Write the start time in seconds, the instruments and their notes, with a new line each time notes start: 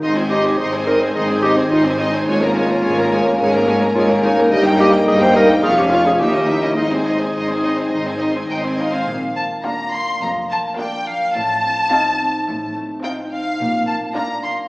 Already playing: clarinet D#4, harp D#4
0.02 double bass section G#1, cello section G#2, harp G#2, french horn section G#3 C4, viola section D#4, violin section D#5 C6
0.16 viola section C4, clarinet F4, violin section C5 G#5
0.30 harp C4, viola section D#4, clarinet G4, violin section D#5 C6
0.44 viola section C4, violin section C5 G#5
0.58 double bass section G#1, cello section G#2, viola section D#4, harp D#4, clarinet G#4, violin section D#5 C6
0.73 viola section C4, violin section C5 G#5
0.87 harp C4, viola section D#4, clarinet A#4, violin section D#5 C6
1.01 viola section C4, violin section C5 G#5
1.14 double bass section G#1, cello section G#2, harp D#3, viola section D#4, clarinet G#4, violin section D#5 C6
1.29 viola section C4, violin section C5 G#5
1.42 harp C4, viola section D#4, clarinet G4, violin section D#5
1.46 violin section C6
1.57 viola section C4, violin section C5 G#5
1.71 double bass section G#1, cello section G#2, harp D#4, viola section D#4, clarinet F4, violin section D#5 C6
1.85 viola section C4, violin section C5 G#5
1.99 harp C4, viola section D#4, clarinet D#4, violin section D#5 C6
2.13 viola section C4, violin section C5 G#5
2.27 double bass section G#1, harp G#2, cello section G#2, viola section G#3, french horn section A#3 C#4, clarinet F4, violin section C#5 G#5
2.41 viola section A#3, violin section A#4 A#5
2.55 viola section G#3, harp A#3, violin section C#5 G#5
2.69 viola section A#3, violin section A#4 A#5
2.83 double bass section G#1, cello section G#2, viola section G#3, harp C#4, violin section C#5 G#5
2.97 viola section A#3, violin section A#4 A#5
3.11 viola section G#3, harp A#3, violin section C#5 G#5
3.26 viola section A#3, violin section A#4 A#5
3.39 double bass section G#1, harp G#2, cello section G#2, viola section G#3, violin section C#5 G#5
3.53 viola section A#3, violin section A#4 A#5
3.67 harp G#3, viola section G#3, violin section C#5 G#5
3.81 viola section A#3, violin section A#4 A#5
3.95 double bass section G#1, cello section G#2, viola section G#3, harp C#4, clarinet F4, violin section C#5 G#5
4.10 viola section A#3, violin section A#4 A#5
4.23 viola section G#3, harp A#3, clarinet D#4, violin section C#5 G#5
4.37 viola section A#3, violin section A#4 A#5
4.51 double bass section G1, harp G2, cello section G2, viola section G3, french horn section D#4, violin section D#5 G5
4.65 viola section A#3, violin section G5 A#5
4.79 viola section G3, harp A#3, clarinet G4, violin section D#5 G5
4.93 viola section A#3, violin section G5 A#5
5.07 double bass section G1, cello section G2, viola section G3, harp D#4, clarinet G#4, violin section D#5 G5
5.21 viola section A#3, clarinet C5, violin section G5 A#5
5.34 viola section G3, harp A#3, clarinet A#4, violin section D#5 G5
5.50 viola section A#3, violin section G5 A#5
5.63 double bass section F1, harp F2, cello section F2, french horn section C#4 F4, viola section F4, clarinet G#4, violin section F5 C#6
5.77 viola section C#4, clarinet G4, violin section C#5 G#5
5.91 harp F4 G#4, viola section F4, clarinet F4, violin section F5 C#6
6.06 viola section C#4, clarinet G#4, violin section C#5 G#5
6.19 double bass section D#2, cello section D#2, harp D#3, viola section D#4, french horn section E4, clarinet G4, violin section E5 G5
6.34 viola section C#4, violin section D#5 A#5
6.48 viola section D#4, harp E4 A#4, violin section E5 G5
6.62 viola section C#4, violin section D#5 A#5
6.77 double bass section G#1, cello section G#2, harp G#2, french horn section C4 D#4, viola section D#4, clarinet G#4, violin section D#5 C6
6.92 viola section C4, violin section C5 G#5
7.06 harp C4, viola section D#4, violin section D#5 C6
7.19 viola section C4, violin section C5 G#5
7.33 double bass section G#1, cello section G#2, viola section D#4, harp D#4, violin section D#5 C6
7.48 viola section C4, violin section C5 G#5
7.63 harp C4, viola section D#4, violin section D#5 C6
7.77 viola section C4, violin section C5 G#5
7.90 double bass section G#1, cello section G#2, harp D#3, viola section D#4, violin section D#5
7.95 violin section C6
8.05 viola section C4, violin section C5 G#5
8.19 harp C4, viola section D#4, violin section D#5
8.24 violin section C6
8.34 viola section C4, violin section C5 G#5
8.48 double bass section G#1, cello section G#2, viola section D#4, harp D#4, violin section D#5 G5 C6
8.62 viola section C4, violin section C5 G#5
8.78 harp C4, viola section D#4, violin section D#5 F5 C6
8.92 viola section C4, violin section C5 G#5
9.07 double bass section A#1, cello section A#2, harp A#2
9.36 harp A#3, violin section A5
9.63 viola section A#3 D4, harp D4, violin section F4 F5 A#5
9.93 harp A#3, violin section C6
10.21 double bass section F1, cello section F2, harp F3, violin section A#5
10.50 harp A#3, violin section A5
10.77 viola section A#3 D4, harp D4, violin section F4 F5 G5
11.07 harp A#3, violin section F5
11.34 double bass section A1, harp A2, cello section A2, violin section A5
11.63 harp C4
11.90 viola section C4 D#4, harp D#4, violin section F4 F5
12.19 harp C4
12.47 double bass section A1, harp A2, cello section A2
12.76 harp A3
13.04 viola section C4 D#4, harp D#4, violin section F4 F5 G5
13.32 harp C4, violin section F5
13.59 double bass section A#1, harp A#2, cello section A#2
13.87 harp A#3, violin section A5
14.14 viola section A#3 D4, harp D4, violin section F4 F5 A#5
14.44 harp A#3, violin section C6